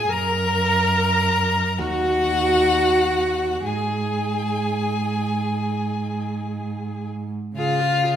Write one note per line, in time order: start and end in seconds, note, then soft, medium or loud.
0.00 0.10 G#4 medium
0.00 0.11 G#4 medium
0.00 0.13 G#5 loud
0.09 1.80 F#2 medium
0.09 1.80 A#4 medium
0.09 1.81 A#4 medium
0.09 1.80 A#5 loud
1.78 3.65 D#2 medium
1.78 3.68 F#4 medium
1.78 3.64 F#4 medium
1.78 3.67 F#5 loud
3.65 7.31 G#2 medium
3.65 7.05 G#4 medium
3.65 7.10 G#4 medium
3.65 7.09 G#5 medium
7.56 8.16 C#3 medium
7.56 8.16 F4 medium
7.56 7.81 G#4 medium
7.56 8.16 F5 loud
7.80 8.05 F4 medium
8.03 8.16 G#4 medium